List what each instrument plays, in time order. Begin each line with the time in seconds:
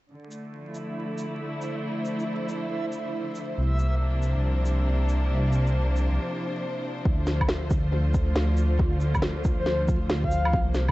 0.09 string section D3, synth texture E4 E5
0.26 string section A3
0.31 shaker
0.52 string section F3
0.74 string section E4, shaker
1.18 shaker
1.57 string section C5
1.62 shaker
2.05 shaker
2.19 shaker
2.49 shaker
2.92 shaker
3.35 shaker
3.57 detuned saw bass C2, string section C3
3.72 string section A#3
3.79 shaker
4.01 string section D4
4.22 shaker
4.37 detuned saw bass C2
4.66 shaker
4.88 detuned saw bass C2
5.09 shaker
5.31 detuned saw bass C2
5.53 shaker
5.67 shaker
5.96 shaker
6.10 detuned saw bass C2
7.04 detuned saw bass D2, string section D3, synth texture F3 F5, kick
7.17 string section F4
7.27 snare, shaker
7.41 string section A3, kick, low woodblock
7.49 snare
7.70 kick, shaker
7.85 detuned saw bass D2
8.14 kick, shaker
8.36 detuned saw bass D2, snare
8.57 shaker
8.79 detuned saw bass D2, kick
9.01 shaker
9.15 kick, low woodblock, shaker
9.22 snare
9.44 kick, shaker
9.59 detuned saw bass D2, soft synth lead C5
9.66 snare
9.88 detuned saw bass D2, kick, shaker
10.10 snare
10.24 soft synth lead F5, kick
10.31 shaker
10.45 low woodblock
10.53 detuned saw bass C2, string section C3, kick
10.62 string section A#3
10.75 snare, shaker
10.89 low woodblock